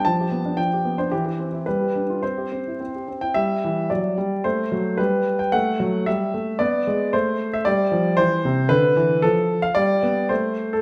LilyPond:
<<
  \new Staff \with { instrumentName = "Grand piano" } { \time 2/4 \key c \major \tempo 4 = 112 a''4 g''8. c''16 | g'4 b'4 | c''4. r16 g''16 | \key g \major e''4 d''4 |
c''4 b'8. g''16 | fis''4 e''4 | d''4 c''8. e''16 | \key c \major d''4 c''4 |
b'4 a'8. f''16 | d''4 c''8. a'16 | }
  \new Staff \with { instrumentName = "Grand piano" } { \time 2/4 \key c \major f16 g'16 b16 d'16 f16 g'16 b16 d'16 | e16 g'16 c'16 e'16 g16 g'16 d'16 f'16 | c'16 g'16 c'16 e'16 c'16 g'16 c'16 e'16 | \key g \major g8 e8 fis8 g8 |
a8 fis8 g4 | a8 fis8 g8 a8 | b8 gis8 a4 | \key c \major g8 f8 e8 c8 |
d8 e8 f4 | g8 b8 a4 | }
>>